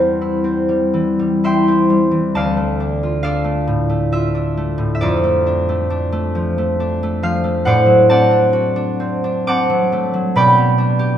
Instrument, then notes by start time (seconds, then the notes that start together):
harp
Already playing: E2 G3 C4 E4 G4 C5 D5 E5 G5
0.21 E4
0.44 C4
0.69 G3
0.94 E3
1.19 G3
1.44 E4 E5 G5 C6
1.68 C4
1.90 G3
2.11 E3
2.35 D2 D5 F5 A5
2.57 A3
2.80 D4
3.03 F4
3.23 D4 A4 D5 F5
3.44 A3
3.67 A2
3.90 A3
4.13 F4 E5
4.35 D4
4.57 A3
4.78 A2
4.95 E5
5.01 F2 F4 A4 D5
5.24 A3
5.47 D4
5.69 A3
5.90 D4
6.12 A3
6.35 F3
6.58 A3
6.80 D4
7.03 A3
7.23 F3 F5
7.44 A3
7.65 A2 C5 D5 F#5
7.86 F#3
8.09 C4 D5 F#5 A5
8.31 D4
8.53 F#4
8.76 D4
9.00 C4
9.24 D4
9.47 C4 F#5 A5 D6
9.70 F#3
9.92 A3
10.14 F#3
10.36 B2 D5 G5 B5
10.57 B3
10.78 D4
10.99 G4